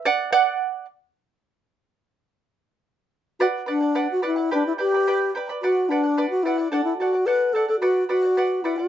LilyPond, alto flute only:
\new Staff \with { instrumentName = "Alto flute" } { \time 2/4 \key b \minor \tempo 4 = 108 r2 | r2 | r2 | fis'8 d'8. fis'16 e'8 |
d'16 e'16 g'4 r8 | fis'8 d'8. fis'16 e'8 | d'16 e'16 fis'8 b'8 a'16 a'16 | fis'8 fis'4 e'16 g'16 | }